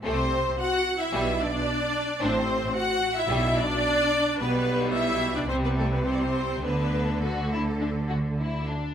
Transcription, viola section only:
X:1
M:4/4
L:1/16
Q:1/4=109
K:G
V:1 name="Viola section"
C4 F3 E3 D6 | C4 F3 E3 D6 | B,4 E3 D C B, A, B, C4 | B,4 A,8 z4 |]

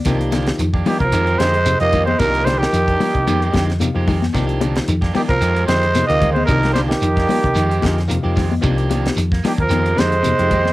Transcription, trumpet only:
X:1
M:4/4
L:1/16
Q:"Swing 16ths" 1/4=112
K:Fdor
V:1 name="Trumpet"
z6 G B3 c3 e2 c | B2 c G8 z4 z | z6 G B3 c3 e2 c | B2 c G8 z4 z |
z6 G B3 c6 |]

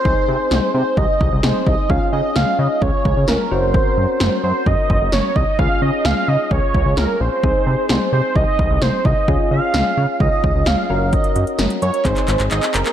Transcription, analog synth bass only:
X:1
M:4/4
L:1/16
Q:1/4=130
K:Db
V:1 name="Analog synth bass" clef=bass
C,, z C, z C,, z C, z C,, z C,, C,, C,, z C,, z | D,, z D, z D,, z D, z D,, z D,, D,, D,, z G,,,2- | G,,, z G,, z G,,, z G,, z G,,, z G,,, G,,, G,,, z C,, z | D,, z D, z D,, z D, z D,, z D,, D,, D,, z B,,, z |
C,, z C, z C,, z C, z C,, z C,, C,, C,, z C,, z | D,, z D, z D,, z D, z D,, z D,, D,, D,, z G,,,2- | G,,, z G,, z G,,, z G,, z A,,, z A,,, A,,, A,,, z G,,, z |]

